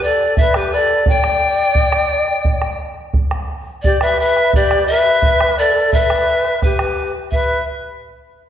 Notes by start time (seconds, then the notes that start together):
0.03 A4 D5
0.21 bombo rim
0.36 B4 E5, bombo low
0.54 G4 B4, bombo rim
0.73 B4 D5
0.77 A4
1.06 D5 G5, bombo low
1.24 bombo rim
1.75 bombo low
1.92 bombo rim
2.28 bombo rim
2.45 bombo low
2.62 bombo rim
3.14 bombo low
3.31 bombo rim
3.82 G4 D5, bombo low
4.01 B4 E5, bombo rim
4.19 B4 E5
4.36 bombo rim
4.53 G4 D5, bombo low
4.71 bombo rim
4.86 B4 E5
5.22 bombo low
5.41 bombo rim
5.58 A4 D5
5.92 B4 E5, bombo low
6.10 bombo rim
6.44 bombo rim
6.62 G4 B4, bombo rim, bombo low
6.79 bombo rim
7.31 B4 E5, bombo low